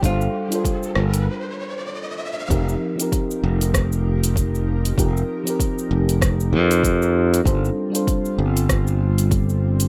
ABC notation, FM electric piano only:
X:1
M:4/4
L:1/16
Q:"Swing 16ths" 1/4=97
K:Fmix
V:1 name="FM electric piano"
[G,DFAc]3 [G,DFAc]4- [G,DFAc] z8 | [F,CEGB]3 [F,CEGB]12- [F,CEGB] | [F,CEGB]3 [F,CEGB]12- [F,CEGB] | [G,DFAc]3 [G,DFAc]12- [G,DFAc] |]